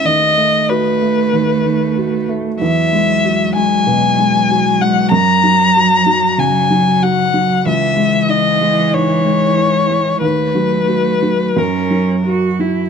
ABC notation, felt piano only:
X:1
M:4/4
L:1/8
Q:1/4=94
K:Bmix
V:1 name="Felt piano" clef=bass
D,, A, F A, D,, D, F A, | E,, G, F G, B,, G, F G, | F,, F, F F, C, F, F F, | C,, G, E G, G,, G, E G, |
D,, F, F F, F,, F, F F, |]